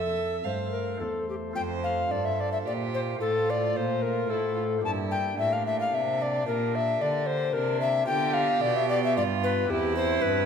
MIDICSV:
0, 0, Header, 1, 5, 480
1, 0, Start_track
1, 0, Key_signature, -1, "major"
1, 0, Tempo, 552995
1, 1355, Time_signature, 3, 2, 24, 8
1, 3255, Tempo, 540541
1, 9209, End_track
2, 0, Start_track
2, 0, Title_t, "Recorder"
2, 0, Program_c, 0, 74
2, 0, Note_on_c, 0, 69, 68
2, 326, Note_off_c, 0, 69, 0
2, 387, Note_on_c, 0, 72, 65
2, 612, Note_off_c, 0, 72, 0
2, 618, Note_on_c, 0, 70, 65
2, 872, Note_on_c, 0, 69, 64
2, 885, Note_off_c, 0, 70, 0
2, 1114, Note_off_c, 0, 69, 0
2, 1121, Note_on_c, 0, 67, 53
2, 1174, Note_off_c, 0, 67, 0
2, 1351, Note_on_c, 0, 79, 97
2, 1405, Note_off_c, 0, 79, 0
2, 1593, Note_on_c, 0, 77, 85
2, 1834, Note_on_c, 0, 74, 98
2, 1847, Note_off_c, 0, 77, 0
2, 1954, Note_on_c, 0, 76, 79
2, 1967, Note_off_c, 0, 74, 0
2, 2086, Note_on_c, 0, 74, 91
2, 2099, Note_off_c, 0, 76, 0
2, 2185, Note_off_c, 0, 74, 0
2, 2190, Note_on_c, 0, 76, 84
2, 2242, Note_off_c, 0, 76, 0
2, 2316, Note_on_c, 0, 74, 86
2, 2368, Note_off_c, 0, 74, 0
2, 2555, Note_on_c, 0, 72, 84
2, 2607, Note_off_c, 0, 72, 0
2, 2782, Note_on_c, 0, 69, 94
2, 3039, Note_on_c, 0, 74, 86
2, 3052, Note_off_c, 0, 69, 0
2, 3268, Note_on_c, 0, 72, 77
2, 3281, Note_off_c, 0, 74, 0
2, 3496, Note_on_c, 0, 70, 90
2, 3509, Note_off_c, 0, 72, 0
2, 3745, Note_on_c, 0, 69, 90
2, 3758, Note_off_c, 0, 70, 0
2, 4222, Note_off_c, 0, 69, 0
2, 4230, Note_on_c, 0, 81, 103
2, 4283, Note_off_c, 0, 81, 0
2, 4465, Note_on_c, 0, 79, 80
2, 4700, Note_off_c, 0, 79, 0
2, 4707, Note_on_c, 0, 76, 93
2, 4834, Note_on_c, 0, 77, 80
2, 4847, Note_off_c, 0, 76, 0
2, 4948, Note_off_c, 0, 77, 0
2, 4953, Note_on_c, 0, 76, 96
2, 5067, Note_off_c, 0, 76, 0
2, 5081, Note_on_c, 0, 77, 97
2, 5203, Note_on_c, 0, 76, 88
2, 5217, Note_off_c, 0, 77, 0
2, 5448, Note_on_c, 0, 74, 92
2, 5461, Note_off_c, 0, 76, 0
2, 5668, Note_off_c, 0, 74, 0
2, 5673, Note_on_c, 0, 70, 101
2, 5921, Note_on_c, 0, 76, 104
2, 5935, Note_off_c, 0, 70, 0
2, 6154, Note_on_c, 0, 74, 87
2, 6168, Note_off_c, 0, 76, 0
2, 6376, Note_on_c, 0, 72, 103
2, 6389, Note_off_c, 0, 74, 0
2, 6615, Note_on_c, 0, 70, 106
2, 6628, Note_off_c, 0, 72, 0
2, 6854, Note_off_c, 0, 70, 0
2, 6859, Note_on_c, 0, 76, 96
2, 7082, Note_off_c, 0, 76, 0
2, 7087, Note_on_c, 0, 79, 116
2, 7327, Note_on_c, 0, 77, 114
2, 7341, Note_off_c, 0, 79, 0
2, 7573, Note_on_c, 0, 74, 116
2, 7586, Note_off_c, 0, 77, 0
2, 7705, Note_on_c, 0, 76, 110
2, 7718, Note_off_c, 0, 74, 0
2, 7814, Note_off_c, 0, 76, 0
2, 7820, Note_on_c, 0, 74, 118
2, 7939, Note_off_c, 0, 74, 0
2, 7955, Note_on_c, 0, 76, 110
2, 8061, Note_off_c, 0, 76, 0
2, 8067, Note_on_c, 0, 74, 114
2, 8120, Note_off_c, 0, 74, 0
2, 8303, Note_on_c, 0, 71, 106
2, 8541, Note_on_c, 0, 67, 121
2, 8554, Note_off_c, 0, 71, 0
2, 8769, Note_off_c, 0, 67, 0
2, 8774, Note_on_c, 0, 72, 118
2, 8998, Note_on_c, 0, 71, 116
2, 9011, Note_off_c, 0, 72, 0
2, 9209, Note_off_c, 0, 71, 0
2, 9209, End_track
3, 0, Start_track
3, 0, Title_t, "Violin"
3, 0, Program_c, 1, 40
3, 0, Note_on_c, 1, 76, 95
3, 378, Note_on_c, 1, 77, 71
3, 391, Note_off_c, 1, 76, 0
3, 868, Note_off_c, 1, 77, 0
3, 1352, Note_on_c, 1, 72, 74
3, 1797, Note_off_c, 1, 72, 0
3, 1829, Note_on_c, 1, 69, 73
3, 2301, Note_on_c, 1, 67, 78
3, 2314, Note_off_c, 1, 69, 0
3, 2779, Note_off_c, 1, 67, 0
3, 2789, Note_on_c, 1, 65, 81
3, 3722, Note_off_c, 1, 65, 0
3, 3732, Note_on_c, 1, 64, 71
3, 3967, Note_off_c, 1, 64, 0
3, 3973, Note_on_c, 1, 65, 65
3, 4044, Note_off_c, 1, 65, 0
3, 4200, Note_on_c, 1, 64, 75
3, 4684, Note_off_c, 1, 64, 0
3, 4700, Note_on_c, 1, 62, 82
3, 6587, Note_off_c, 1, 62, 0
3, 6624, Note_on_c, 1, 62, 83
3, 7091, Note_off_c, 1, 62, 0
3, 7099, Note_on_c, 1, 67, 105
3, 8067, Note_on_c, 1, 65, 97
3, 8081, Note_off_c, 1, 67, 0
3, 8538, Note_off_c, 1, 65, 0
3, 8544, Note_on_c, 1, 64, 107
3, 9209, Note_off_c, 1, 64, 0
3, 9209, End_track
4, 0, Start_track
4, 0, Title_t, "Pipe organ"
4, 0, Program_c, 2, 19
4, 0, Note_on_c, 2, 41, 45
4, 350, Note_off_c, 2, 41, 0
4, 389, Note_on_c, 2, 57, 45
4, 393, Note_on_c, 2, 43, 52
4, 394, Note_on_c, 2, 69, 44
4, 397, Note_on_c, 2, 72, 44
4, 839, Note_off_c, 2, 57, 0
4, 841, Note_off_c, 2, 43, 0
4, 841, Note_off_c, 2, 69, 0
4, 843, Note_off_c, 2, 72, 0
4, 875, Note_on_c, 2, 40, 51
4, 876, Note_on_c, 2, 57, 40
4, 879, Note_on_c, 2, 69, 38
4, 882, Note_on_c, 2, 72, 41
4, 1299, Note_off_c, 2, 57, 0
4, 1317, Note_on_c, 2, 57, 46
4, 1322, Note_off_c, 2, 40, 0
4, 1324, Note_off_c, 2, 69, 0
4, 1326, Note_off_c, 2, 72, 0
4, 1333, Note_on_c, 2, 65, 45
4, 1344, Note_on_c, 2, 72, 44
4, 1356, Note_on_c, 2, 41, 53
4, 1798, Note_off_c, 2, 41, 0
4, 1798, Note_off_c, 2, 57, 0
4, 1830, Note_on_c, 2, 43, 57
4, 2270, Note_off_c, 2, 43, 0
4, 2302, Note_on_c, 2, 46, 55
4, 2736, Note_off_c, 2, 65, 0
4, 2739, Note_on_c, 2, 57, 49
4, 2741, Note_off_c, 2, 72, 0
4, 2744, Note_off_c, 2, 46, 0
4, 2754, Note_on_c, 2, 65, 47
4, 2764, Note_on_c, 2, 72, 47
4, 2781, Note_on_c, 2, 45, 51
4, 3221, Note_off_c, 2, 45, 0
4, 3254, Note_on_c, 2, 46, 60
4, 3701, Note_off_c, 2, 46, 0
4, 3734, Note_on_c, 2, 45, 58
4, 4162, Note_off_c, 2, 57, 0
4, 4169, Note_off_c, 2, 65, 0
4, 4174, Note_off_c, 2, 72, 0
4, 4177, Note_on_c, 2, 58, 51
4, 4181, Note_off_c, 2, 45, 0
4, 4195, Note_on_c, 2, 62, 49
4, 4206, Note_on_c, 2, 67, 49
4, 4215, Note_on_c, 2, 43, 58
4, 4666, Note_off_c, 2, 43, 0
4, 4710, Note_on_c, 2, 45, 64
4, 5154, Note_off_c, 2, 45, 0
4, 5196, Note_on_c, 2, 48, 61
4, 5610, Note_off_c, 2, 58, 0
4, 5619, Note_off_c, 2, 62, 0
4, 5625, Note_off_c, 2, 67, 0
4, 5632, Note_on_c, 2, 58, 54
4, 5636, Note_off_c, 2, 48, 0
4, 5649, Note_on_c, 2, 62, 50
4, 5663, Note_on_c, 2, 67, 52
4, 5673, Note_on_c, 2, 46, 59
4, 6113, Note_off_c, 2, 46, 0
4, 6152, Note_on_c, 2, 50, 67
4, 6592, Note_off_c, 2, 50, 0
4, 6633, Note_on_c, 2, 48, 64
4, 7048, Note_off_c, 2, 58, 0
4, 7057, Note_off_c, 2, 62, 0
4, 7063, Note_on_c, 2, 59, 58
4, 7064, Note_off_c, 2, 67, 0
4, 7070, Note_off_c, 2, 48, 0
4, 7073, Note_on_c, 2, 65, 62
4, 7090, Note_on_c, 2, 67, 58
4, 7105, Note_on_c, 2, 50, 63
4, 7547, Note_off_c, 2, 50, 0
4, 7575, Note_on_c, 2, 47, 81
4, 8024, Note_off_c, 2, 47, 0
4, 8062, Note_on_c, 2, 43, 69
4, 8486, Note_off_c, 2, 59, 0
4, 8491, Note_off_c, 2, 65, 0
4, 8500, Note_off_c, 2, 67, 0
4, 8500, Note_on_c, 2, 60, 63
4, 8505, Note_off_c, 2, 43, 0
4, 8509, Note_on_c, 2, 64, 69
4, 8525, Note_on_c, 2, 67, 65
4, 8539, Note_on_c, 2, 40, 70
4, 8982, Note_off_c, 2, 40, 0
4, 9004, Note_on_c, 2, 43, 78
4, 9209, Note_off_c, 2, 43, 0
4, 9209, Note_off_c, 2, 60, 0
4, 9209, Note_off_c, 2, 64, 0
4, 9209, Note_off_c, 2, 67, 0
4, 9209, End_track
5, 0, Start_track
5, 0, Title_t, "Cello"
5, 0, Program_c, 3, 42
5, 0, Note_on_c, 3, 41, 72
5, 345, Note_off_c, 3, 41, 0
5, 382, Note_on_c, 3, 43, 63
5, 836, Note_off_c, 3, 43, 0
5, 868, Note_on_c, 3, 40, 63
5, 1319, Note_off_c, 3, 40, 0
5, 1357, Note_on_c, 3, 41, 72
5, 1799, Note_off_c, 3, 41, 0
5, 1828, Note_on_c, 3, 43, 70
5, 2294, Note_off_c, 3, 43, 0
5, 2303, Note_on_c, 3, 46, 74
5, 2770, Note_off_c, 3, 46, 0
5, 2776, Note_on_c, 3, 45, 75
5, 3244, Note_off_c, 3, 45, 0
5, 3256, Note_on_c, 3, 46, 69
5, 3728, Note_off_c, 3, 46, 0
5, 3737, Note_on_c, 3, 45, 69
5, 4209, Note_off_c, 3, 45, 0
5, 4221, Note_on_c, 3, 43, 76
5, 4695, Note_off_c, 3, 43, 0
5, 4704, Note_on_c, 3, 45, 70
5, 5177, Note_off_c, 3, 45, 0
5, 5193, Note_on_c, 3, 48, 76
5, 5660, Note_off_c, 3, 48, 0
5, 5671, Note_on_c, 3, 46, 83
5, 6138, Note_off_c, 3, 46, 0
5, 6151, Note_on_c, 3, 50, 75
5, 6617, Note_off_c, 3, 50, 0
5, 6634, Note_on_c, 3, 48, 87
5, 7096, Note_off_c, 3, 48, 0
5, 7111, Note_on_c, 3, 50, 90
5, 7576, Note_off_c, 3, 50, 0
5, 7587, Note_on_c, 3, 47, 89
5, 8069, Note_on_c, 3, 43, 93
5, 8082, Note_off_c, 3, 47, 0
5, 8534, Note_off_c, 3, 43, 0
5, 8539, Note_on_c, 3, 40, 95
5, 9008, Note_off_c, 3, 40, 0
5, 9022, Note_on_c, 3, 43, 92
5, 9209, Note_off_c, 3, 43, 0
5, 9209, End_track
0, 0, End_of_file